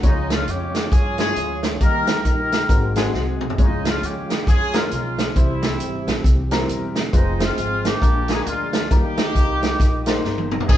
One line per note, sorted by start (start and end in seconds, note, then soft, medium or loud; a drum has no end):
0.00 0.41 C#2 medium
0.00 0.71 C#3 medium
0.00 0.71 G#3 medium
0.00 0.88 G#3 medium
0.00 0.71 C#4 medium
0.00 0.10 D#4 medium
0.00 0.28 A#4 medium
0.00 0.71 C#5 medium
0.00 0.28 F#5 medium
0.00 kick loud
0.00 closed hi-hat medium
0.04 1.78 F3 medium
0.04 1.78 C#4 medium
0.04 0.29 D#4 medium
0.04 1.78 F4 medium
0.04 1.78 C#5 medium
0.09 0.74 F4 medium
0.30 0.48 F4 medium
0.30 snare loud
0.30 closed hi-hat medium
0.48 0.85 F2 medium
0.48 0.90 C#4 medium
0.48 0.92 G4 medium
0.48 closed hi-hat medium
0.75 snare medium
0.75 closed hi-hat medium
0.91 1.30 G2 medium
0.91 1.18 C#4 medium
0.91 1.18 F4 medium
0.91 1.17 G#4 loud
0.91 kick loud
0.91 closed hi-hat medium
1.18 1.66 G#3 medium
1.18 1.77 C#4 medium
1.18 1.66 C#4 medium
1.18 1.24 E4 medium
1.18 1.77 F4 medium
1.18 1.60 G#4 loud
1.18 1.67 C#5 medium
1.18 snare loud
1.18 closed hi-hat medium
1.25 1.69 F4 medium
1.36 1.74 D2 medium
1.36 closed hi-hat medium
1.63 snare medium
1.63 closed hi-hat medium
1.81 2.18 D#2 loud
1.81 2.48 D#3 medium
1.81 2.49 G3 medium
1.81 2.68 G3 medium
1.81 2.49 A#3 medium
1.81 2.68 A#3 medium
1.81 2.24 D#4 medium
1.81 2.49 D#4 medium
1.81 2.68 D#4 medium
1.81 2.24 G4 medium
1.81 2.22 A#4 loud
1.81 2.49 A#4 medium
1.81 2.68 A#4 medium
1.81 kick medium
1.81 closed hi-hat medium
2.07 snare loud
2.07 closed hi-hat medium
2.25 2.63 A#1 medium
2.25 2.92 D#4 medium
2.25 2.92 G4 medium
2.25 2.92 A#4 medium
2.25 kick medium
2.25 closed hi-hat medium
2.52 snare medium
2.52 closed hi-hat medium
2.69 3.07 G#1 loud
2.69 3.37 G#2 medium
2.69 3.56 F#3 medium
2.69 2.91 G#3 medium
2.69 3.56 A#3 soft
2.69 3.56 C4 medium
2.69 2.91 C4 medium
2.69 2.91 F#4 medium
2.69 3.56 G#4 medium
2.69 2.91 A#4 medium
2.69 kick loud
2.69 closed hi-hat medium
2.96 3.44 G#3 medium
2.96 3.44 C4 medium
2.96 3.44 F#4 medium
2.96 3.44 G#4 loud
2.96 3.13 G#5 medium
2.96 snare loud
2.96 closed hi-hat medium
3.13 3.51 C2 medium
3.13 3.55 D#5 medium
3.13 snare medium
3.41 mid tom medium
3.50 floor tom medium
3.57 3.96 C#2 medium
3.57 4.26 C#3 medium
3.57 5.32 F3 medium
3.57 5.32 G#3 medium
3.57 4.43 G#3 medium
3.57 4.26 G#3 medium
3.57 5.32 C#4 soft
3.57 4.26 C#4 medium
3.57 3.85 D#4 medium
3.57 3.65 E4 medium
3.57 5.32 F4 medium
3.57 4.26 C#5 medium
3.57 kick loud
3.57 closed hi-hat medium
3.64 4.29 F4 medium
3.85 4.04 F4 medium
3.85 snare loud
3.85 closed hi-hat medium
4.02 4.40 D#2 medium
4.02 4.46 C#4 medium
4.02 4.47 G4 medium
4.02 closed hi-hat medium
4.30 snare medium
4.30 closed hi-hat medium
4.47 4.85 F2 medium
4.47 4.91 C#4 medium
4.47 4.73 F4 medium
4.47 4.74 G#4 loud
4.47 kick loud
4.47 closed hi-hat medium
4.73 5.21 G#3 medium
4.73 5.21 C#4 medium
4.73 4.91 F4 medium
4.73 5.21 F4 medium
4.73 5.21 A#4 medium
4.73 snare loud
4.73 closed hi-hat medium
4.91 5.29 B1 medium
4.91 5.33 G#3 medium
4.91 5.33 C#4 medium
4.91 5.33 F4 medium
4.91 closed hi-hat medium
5.18 snare medium
5.18 closed hi-hat medium
5.35 5.73 C2 loud
5.35 6.03 C3 medium
5.35 7.09 E3 medium
5.35 7.10 G3 medium
5.35 6.21 G3 medium
5.35 6.04 G3 medium
5.35 7.10 C4 medium
5.35 6.21 C4 medium
5.35 6.04 C4 medium
5.35 6.24 E4 medium
5.35 6.04 E4 medium
5.35 7.09 G4 medium
5.35 6.04 C5 medium
5.35 kick loud
5.35 closed hi-hat medium
5.63 snare loud
5.63 closed hi-hat medium
5.80 6.03 G#1 medium
5.80 closed hi-hat medium
6.07 6.22 A#1 medium
6.07 snare loud
6.07 closed hi-hat medium
6.24 6.62 C2 medium
6.24 kick loud
6.24 closed hi-hat medium
6.51 6.99 G3 medium
6.51 6.98 C4 medium
6.51 6.98 E4 medium
6.51 6.99 A#4 loud
6.51 snare loud
6.51 closed hi-hat medium
6.68 7.06 E1 medium
6.68 closed hi-hat medium
6.95 snare loud
6.95 closed hi-hat medium
7.13 7.51 F1 loud
7.13 8.00 F3 medium
7.13 8.00 G#3 medium
7.13 7.81 G#3 medium
7.13 7.40 G#3 medium
7.13 7.81 C4 medium
7.13 8.00 C4 medium
7.13 7.40 C4 medium
7.13 7.38 D#4 medium
7.13 7.81 F4 medium
7.13 8.00 G#4 medium
7.13 7.20 B4 medium
7.13 kick loud
7.13 closed hi-hat medium
7.19 7.84 C5 medium
7.40 7.98 G#3 medium
7.40 7.99 C4 medium
7.40 7.85 F4 loud
7.40 snare loud
7.40 closed hi-hat medium
7.57 7.95 G#1 medium
7.57 closed hi-hat medium
7.84 8.45 D4 medium
7.84 8.29 G4 loud
7.84 snare loud
7.84 closed hi-hat medium
8.02 8.40 A#1 loud
8.02 8.69 A#2 medium
8.02 8.90 F3 medium
8.02 8.24 G#3 medium
8.02 8.89 A#3 soft
8.02 8.24 D4 medium
8.02 8.89 D4 medium
8.02 8.24 F4 medium
8.02 8.89 G#4 medium
8.02 8.24 A#4 medium
8.02 kick loud
8.02 closed hi-hat medium
8.28 8.76 G#3 medium
8.28 8.76 D4 medium
8.28 8.76 F4 medium
8.28 8.46 G#4 loud
8.28 8.33 A4 medium
8.28 snare loud
8.28 closed hi-hat medium
8.34 8.79 A#4 medium
8.46 8.84 D2 medium
8.46 8.88 G#3 medium
8.46 8.88 D4 medium
8.46 8.91 F4 medium
8.46 closed hi-hat medium
8.73 snare loud
8.73 closed hi-hat medium
8.91 9.35 D#2 loud
8.91 9.59 D#3 medium
8.91 8.97 F3 soft
8.91 8.98 F3 medium
8.91 10.65 A#3 medium
8.91 10.20 A#3 medium
8.91 9.59 A#3 medium
8.91 10.20 D#4 medium
8.91 10.65 D#4 medium
8.91 9.59 D#4 medium
8.91 10.21 G4 loud
8.91 10.65 A#4 medium
8.91 9.59 A#4 medium
8.91 kick loud
8.91 closed hi-hat medium
8.96 10.68 G3 medium
8.96 9.62 G3 medium
9.17 snare loud
9.17 closed hi-hat medium
9.35 9.73 C2 medium
9.35 kick medium
9.35 closed hi-hat medium
9.61 9.78 C#5 medium
9.61 snare medium
9.61 closed hi-hat medium
9.80 10.18 A#1 medium
9.80 10.05 D#5 medium
9.80 kick loud
9.80 closed hi-hat medium
10.06 10.54 G3 medium
10.06 10.54 A#3 medium
10.06 10.54 D#4 medium
10.06 10.54 C5 loud
10.06 10.23 D#5 medium
10.06 snare loud
10.06 closed hi-hat medium
10.24 10.62 G1 medium
10.24 10.50 G5 medium
10.24 snare medium
10.38 high tom medium
10.51 10.68 A#5 medium
10.51 mid tom medium
10.60 floor tom medium
10.69 10.78 G#1 loud
10.69 10.78 G#2 medium
10.69 10.78 G#3 medium
10.69 10.75 A#3 soft
10.69 10.78 C4 medium
10.69 10.78 D#4 medium
10.69 10.78 G#4 loud
10.69 10.78 G#4 medium
10.69 kick loud
10.69 crash loud
10.69 tambourine medium